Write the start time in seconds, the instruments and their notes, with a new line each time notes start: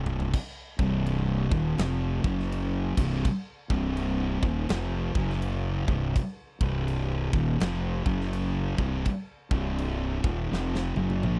Already playing: fingered electric bass C1, distorted electric guitar C2 G2 C3
0.06 floor tom
0.20 floor tom
0.33 kick, crash
0.79 fingered electric bass C1, distorted electric guitar C2 G2 C3, kick
1.06 crash
1.51 fingered electric bass D#1, distorted electric guitar D#2 A#2 D#3, kick
1.78 fingered electric bass F1, distorted electric guitar F2 C3 F3, snare, crash
2.24 fingered electric bass F#1, distorted electric guitar F#2 C#3 F#3, kick
2.39 snare
2.52 crash
2.97 fingered electric bass C1, distorted electric guitar C2 G2 C3, kick, crash
3.25 kick, crash
3.70 fingered electric bass C1, distorted electric guitar C2 G2 C3, kick
3.97 crash
4.42 fingered electric bass D#1, distorted electric guitar D#2 A#2 D#3, kick
4.69 fingered electric bass F1, distorted electric guitar F2 C3, snare, crash
4.74 distorted electric guitar F3
5.15 fingered electric bass F#1, distorted electric guitar F#2 C#3 F#3, kick
5.30 snare
5.42 crash
5.88 fingered electric bass C1, distorted electric guitar C2 G2 C3, kick
6.16 kick, crash
6.61 fingered electric bass C1, distorted electric guitar C2 G2 C3, kick
6.88 crash
7.33 fingered electric bass D#1, distorted electric guitar D#2 A#2 D#3, kick
7.60 fingered electric bass F1, distorted electric guitar F2 C3 F3, snare, crash
8.05 fingered electric bass F#1, distorted electric guitar F#2 C#3 F#3, kick
8.21 snare
8.33 crash
8.78 fingered electric bass C1, distorted electric guitar C2 G2 C3, kick
9.05 kick, crash
9.51 fingered electric bass C1, distorted electric guitar C2 G2 C3, kick
9.78 crash
10.23 fingered electric bass D#1, distorted electric guitar D#2 A#2 D#3, kick
10.51 fingered electric bass F1, distorted electric guitar F2 C3 F3, snare
10.75 snare
10.96 fingered electric bass F#1, distorted electric guitar F#2 C#3 F#3, high tom
11.10 high tom
11.23 fingered electric bass A#1, distorted electric guitar A#2 F3 A#3, mid tom